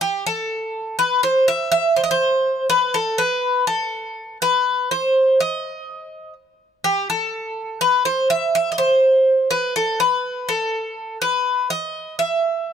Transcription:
0.01 G4
0.26 A4
0.99 B4
1.23 C5
1.48 E5
1.72 E5
1.96 C5
2.04 D#5
2.11 C5
2.70 B4
2.94 A4
3.18 B4
3.67 A4
4.42 B4
4.91 C5
5.40 D#5
6.84 G4
7.10 A4
7.81 B4
8.05 C5
8.30 E5
8.55 E5
8.72 D#5
8.78 C5
9.51 B4
9.76 A4
10.00 B4
10.49 A4
11.22 B4
11.70 D#5
12.19 E5

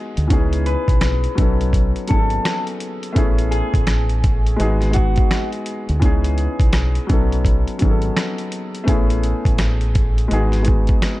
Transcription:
Already playing: G#3 B3 D#4 F#4 G#4
0.17 D2, closed hi-hat
0.28 C#2 E3 B3 C#4 D#4, kick, closed hi-hat
0.33 G#4
0.53 closed hi-hat
0.66 B4, closed hi-hat
0.88 B1, kick, closed hi-hat
1.01 cross-stick, snare, closed hi-hat
1.24 closed hi-hat
1.35 B1 F#3 B3 C#4 D#4, kick, closed hi-hat
1.40 A4
1.61 closed hi-hat
1.73 kick, closed hi-hat
1.96 closed hi-hat
2.07 G#1 F#3 B3 C#4 D#4 A4, kick, closed hi-hat
2.12 G#4
2.19 A4
2.30 closed hi-hat
2.45 cross-stick, snare, closed hi-hat
2.67 closed hi-hat
2.80 closed hi-hat
3.03 closed hi-hat
3.12 A3 B3 C#4 E4, kick, closed hi-hat
3.17 A1 G#4
3.38 closed hi-hat
3.51 G#4, closed hi-hat
3.74 A1, kick, closed hi-hat
3.87 cross-stick, snare, closed hi-hat
4.09 closed hi-hat
4.24 kick, closed hi-hat
4.46 closed hi-hat
4.56 G#1 G#3 B3 D#4 F#4, closed hi-hat
4.61 G#4
4.81 snare, closed hi-hat
4.91 G#3 B3 D#4 F#4, closed hi-hat
4.96 G#4, kick
5.16 kick, closed hi-hat
5.31 cross-stick, snare, closed hi-hat
5.52 closed hi-hat
5.66 closed hi-hat
5.89 D2, closed hi-hat
6.00 C#2 E3 B3 C#4 D#4, kick, closed hi-hat
6.04 G#4
6.24 closed hi-hat
6.38 closed hi-hat
6.60 B1, kick, closed hi-hat
6.73 cross-stick, snare, closed hi-hat
6.95 closed hi-hat
7.07 B1 F#3 B3 C#4 D#4, kick, closed hi-hat
7.12 A4
7.32 closed hi-hat
7.45 kick, closed hi-hat
7.68 closed hi-hat
7.79 F#3 B3 C#4 D#4, kick, closed hi-hat
7.83 G#1 G#4
7.90 A4
8.02 closed hi-hat
8.17 cross-stick, snare, closed hi-hat
8.38 closed hi-hat
8.52 closed hi-hat
8.75 closed hi-hat
8.84 A3 B3 C#4 E4, kick, closed hi-hat
8.88 A1 G#4
9.10 closed hi-hat
9.23 closed hi-hat
9.45 A1, kick, closed hi-hat
9.58 cross-stick, snare, closed hi-hat
9.81 closed hi-hat
9.95 kick, closed hi-hat
10.18 closed hi-hat
10.28 G#1 G#3 B3 D#4 F#4, closed hi-hat
10.33 G#4
10.52 snare, closed hi-hat
10.62 G#3 B3 D#4 F#4, closed hi-hat
10.67 G#4, kick
10.87 kick, closed hi-hat
11.02 cross-stick, snare, closed hi-hat

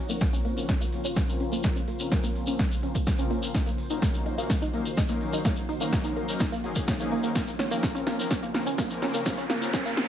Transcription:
Already playing: C#3 A#3 F4 C5
0.09 F3 A#3 C4 C#4 A#4, closed hi-hat, shekere
0.21 kick, snare, closed hi-hat, shekere
0.33 C#4, closed hi-hat, shekere
0.45 A#3, open hi-hat
0.57 F3 A#3 C4 C#4 A#4, closed hi-hat, shekere
0.69 C#4, kick, snare, closed hi-hat, shekere
0.81 A#3, closed hi-hat, shekere
0.93 F3 A#3 C4 C#4 A#4, open hi-hat
1.05 C#4, closed hi-hat, shekere
1.16 A#3, kick, snare, closed hi-hat, shekere
1.28 F3 A#3 C4 C#4 A#4, closed hi-hat, shekere
1.40 C#4, open hi-hat
1.52 A#3, closed hi-hat, shekere
1.63 F3 A#3 C4 C#4 A#4 C5, kick, snare, closed hi-hat, shekere
1.76 C#4, closed hi-hat, shekere
1.88 A#3, open hi-hat
1.99 F3 A#3 C4 C#4 A#4, closed hi-hat, shekere
2.12 C#4, kick, snare, closed hi-hat, shekere
2.23 A#3, closed hi-hat, shekere
2.35 open hi-hat
2.47 F3 A#3 C4 C#4 A#4, closed hi-hat, shekere
2.59 A#3, kick, snare, closed hi-hat, shekere
2.71 closed hi-hat, shekere
2.83 F3 A#3 C4 C#4 A#4, open hi-hat
2.95 A#3, kick, closed hi-hat, shekere
3.07 kick, snare, closed hi-hat, shekere
3.18 F3 A#3 C4 C#4 A#4, closed hi-hat, shekere
3.31 A#3, open hi-hat
3.43 closed hi-hat, shekere
3.55 D#3 F#3 A#3 C#4 D#4 F#4 A#4, kick, snare, closed hi-hat, shekere
3.67 A#3, closed hi-hat, shekere
3.78 open hi-hat
3.90 F#3 A#3 C#4 D#4 A#4, closed hi-hat, shekere
4.02 A#3, kick, snare, closed hi-hat, shekere
4.14 closed hi-hat, shekere
4.26 D#4, open hi-hat
4.38 F#3 A#3 C#4 D#4 A#4, closed hi-hat, shekere
4.50 kick, snare, closed hi-hat, shekere
4.62 D#4, closed hi-hat, shekere
4.74 F#3 A#3 C#4 D#4 A#4, open hi-hat
4.85 closed hi-hat, shekere
4.97 D#4, kick, snare, closed hi-hat, shekere
5.08 F#3 A#3 C#4 D#4 A#4, closed hi-hat, shekere
5.21 open hi-hat
5.33 D#4, closed hi-hat, shekere
5.45 F#3 A#3 C#4 D#4 A#4, kick, snare, closed hi-hat, shekere
5.56 closed hi-hat, shekere
5.69 D#4, open hi-hat
5.81 F#3 A#3 C#4 D#4 A#4, closed hi-hat, shekere
5.92 kick, snare, closed hi-hat, shekere
6.04 D#4, closed hi-hat, shekere
6.16 A#3, open hi-hat
6.28 F#3 A#3 C#4 D#4 A#4, closed hi-hat, shekere
6.39 D#4, kick, snare, closed hi-hat, shekere
6.52 A#3, closed hi-hat, shekere
6.64 F#3 A#3 C#4 D#4 F#4 G#4, open hi-hat
6.75 F#3 A#3 C#4 D#4 G#4, kick, shekere
6.88 C#5, kick, snare, closed hi-hat, shekere
7.00 F#3 A#3 C#4 D#4 G#4, closed hi-hat, shekere
7.12 A#3, open hi-hat
7.23 F#3 A#3 C#4 D#4 A#4, closed hi-hat, shekere
7.35 C#3 F3 A#3 C4 C#4 F4 A#4 C5, kick, snare, closed hi-hat, riser, shekere
7.47 closed hi-hat, shekere
7.59 C#4, snare, open hi-hat
7.71 F3 A#3 C4 C#4 A#4, closed hi-hat, shekere
7.83 kick, snare, closed hi-hat, shekere
7.95 C#4, closed hi-hat, shekere
8.07 A#3, snare, open hi-hat
8.19 F3 A#3 C4 C#4 A#4, closed hi-hat, shekere
8.31 C#4, kick, snare, closed hi-hat, shekere
8.42 A#3, closed hi-hat, shekere
8.54 F3 A#3 C4 C#4 A#4, snare, open hi-hat
8.66 C#4, closed hi-hat, shekere
8.78 A#3, kick, snare, closed hi-hat, shekere
8.90 F3 A#3 C4 C#4 A#4, closed hi-hat, shekere
9.02 C#4, snare, open hi-hat
9.14 A#3, closed hi-hat, shekere
9.26 F3 A#3 C4 C#4 A#4, kick, snare, closed hi-hat, shekere
9.38 C#4, closed hi-hat, shekere
9.50 A#3, snare, open hi-hat
9.62 F3 A#3 C4 C#4 A#4, closed hi-hat, shekere
9.73 C#4, kick, snare, closed hi-hat, shekere
9.85 A#3, closed hi-hat, shekere
9.97 snare, open hi-hat

